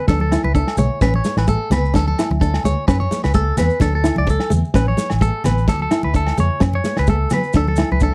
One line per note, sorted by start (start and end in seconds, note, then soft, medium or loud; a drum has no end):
0.08 0.36 D2 medium
0.08 0.25 D4 medium
0.08 0.20 A4 medium
0.08 kick medium
0.08 snare medium
0.08 high conga medium
0.08 maracas medium
0.20 0.43 A4 medium
0.20 high conga medium
0.32 0.48 E4 medium
0.32 snare medium
0.32 low agogo medium
0.32 maracas medium
0.44 0.62 C#2 medium
0.44 0.54 B4 medium
0.44 high conga medium
0.55 0.71 D4 medium
0.55 0.77 A4 medium
0.55 kick medium
0.55 maracas medium
0.67 snare medium
0.67 low agogo medium
0.77 0.87 B1 medium
0.77 0.95 A3 medium
0.77 1.00 C#5 medium
0.77 low conga medium
0.77 maracas medium
1.01 1.19 A1 medium
1.01 1.18 C#4 medium
1.01 1.14 B4 medium
1.01 kick medium
1.01 snare medium
1.01 low agogo medium
1.01 maracas medium
1.14 1.37 C#5 medium
1.14 high conga medium
1.24 1.42 A3 medium
1.24 snare medium
1.24 maracas medium
1.37 1.55 A1 medium
1.37 1.48 B4 medium
1.37 snare medium
1.37 low agogo medium
1.37 maracas soft
1.48 1.64 A3 medium
1.48 1.70 A4 medium
1.48 kick medium
1.48 maracas medium
1.70 1.95 C#2 medium
1.70 1.87 B3 medium
1.70 1.94 B4 medium
1.70 snare medium
1.70 low conga medium
1.70 low agogo medium
1.70 maracas medium
1.85 maracas soft
1.94 2.13 D2 medium
1.94 2.10 D4 medium
1.94 2.06 A4 medium
1.94 kick medium
1.94 snare soft
1.94 high conga medium
1.94 maracas medium
2.08 2.29 A4 medium
2.08 high conga medium
2.19 2.35 E4 medium
2.19 snare medium
2.19 low agogo medium
2.19 maracas medium
2.31 2.57 D2 medium
2.31 muted clean electric guitar stroke medium
2.31 high conga medium
2.41 2.58 D4 medium
2.41 2.63 A4 medium
2.41 kick medium
2.41 maracas medium
2.54 snare medium
2.54 low agogo medium
2.64 2.74 D2 medium
2.64 2.81 A3 medium
2.64 2.87 C#5 medium
2.64 low conga medium
2.64 maracas medium
2.88 3.06 F#2 medium
2.88 3.04 C#4 medium
2.88 3.00 B4 medium
2.88 kick medium
2.88 snare medium
2.88 low agogo medium
2.88 maracas medium
3.00 3.22 C#5 medium
3.00 high conga medium
3.11 3.27 A3 medium
3.11 snare medium
3.11 high conga medium
3.11 maracas medium
3.24 3.51 C#2 medium
3.24 3.34 B4 medium
3.24 snare medium
3.24 low agogo medium
3.24 maracas soft
3.34 3.51 A3 medium
3.34 3.57 A4 medium
3.34 kick medium
3.34 maracas medium
3.57 3.68 E2 medium
3.57 3.75 B3 medium
3.57 3.80 B4 medium
3.57 snare medium
3.57 low conga medium
3.57 low agogo medium
3.57 maracas medium
3.70 maracas soft
3.80 4.09 D2 medium
3.80 3.97 D4 medium
3.80 3.93 A4 medium
3.80 kick medium
3.80 snare medium
3.80 high conga medium
3.80 low conga soft
3.80 maracas medium
3.95 4.17 A4 medium
4.04 4.20 E4 medium
4.04 snare medium
4.04 low agogo medium
4.04 maracas medium
4.16 4.36 C#2 medium
4.16 4.28 D5 medium
4.16 high conga medium
4.27 4.51 A4 medium
4.27 muted nylon-string guitar stroke medium
4.27 kick medium
4.27 snare soft
4.27 maracas medium
4.40 snare medium
4.40 low agogo medium
4.50 4.61 E2 medium
4.50 4.67 A3 medium
4.50 low conga medium
4.50 maracas medium
4.65 maracas soft
4.74 4.93 A1 medium
4.74 4.91 C#4 medium
4.74 4.87 B4 medium
4.74 kick medium
4.74 snare medium
4.74 low agogo medium
4.74 maracas medium
4.87 5.10 C#5 medium
4.87 high conga medium
4.97 5.14 A3 medium
4.97 snare medium
4.97 maracas medium
5.10 5.29 A1 medium
5.10 snare medium
5.10 low agogo medium
5.10 maracas soft
5.21 5.37 A3 medium
5.21 5.44 A4 medium
5.21 kick medium
5.21 maracas medium
5.44 5.68 A1 medium
5.44 5.61 B3 medium
5.44 5.67 B4 medium
5.44 snare medium
5.44 low conga medium
5.44 low agogo medium
5.44 maracas medium
5.58 maracas soft
5.68 5.86 D2 medium
5.68 5.80 A4 medium
5.68 muted nylon-string guitar stroke medium
5.68 kick medium
5.68 snare medium
5.68 high conga medium
5.68 maracas medium
5.80 6.03 A4 medium
5.80 high conga medium
5.91 6.08 E4 medium
5.91 snare medium
5.91 low agogo medium
5.91 maracas medium
6.03 6.31 D2 medium
6.03 6.14 B4 medium
6.03 high conga medium
6.14 6.30 D4 medium
6.14 6.37 A4 medium
6.14 kick medium
6.14 maracas medium
6.27 snare medium
6.27 low agogo medium
6.37 6.48 F2 medium
6.37 6.54 A3 medium
6.37 6.61 C#5 medium
6.37 low conga medium
6.37 maracas medium
6.60 6.79 F#2 medium
6.60 6.77 C#4 medium
6.60 muted clean electric guitar stroke medium
6.60 kick medium
6.60 snare medium
6.60 low agogo medium
6.60 maracas medium
6.73 6.97 C#5 medium
6.73 high conga medium
6.84 7.01 A3 medium
6.84 snare medium
6.84 maracas medium
6.97 7.25 C#2 medium
6.97 7.08 B4 medium
6.97 snare medium
6.97 low agogo medium
6.97 maracas soft
7.07 7.24 A3 medium
7.07 7.31 A4 medium
7.07 kick medium
7.07 maracas medium
7.30 7.41 F#3 medium
7.30 7.48 B3 medium
7.30 7.54 B4 medium
7.30 snare medium
7.30 low conga medium
7.30 low agogo medium
7.30 maracas medium
7.43 maracas soft
7.53 7.82 D2 medium
7.53 7.72 D4 medium
7.53 7.67 A4 medium
7.53 kick medium
7.53 snare medium
7.53 high conga medium
7.53 maracas medium
7.68 7.90 A4 medium
7.68 high conga medium
7.76 7.94 E4 medium
7.76 snare medium
7.76 low agogo medium
7.76 maracas medium
7.92 8.09 C#2 medium
7.92 8.01 B4 medium
7.92 high conga medium
8.00 8.14 D4 medium
8.00 8.14 A4 medium
8.00 kick medium
8.00 maracas medium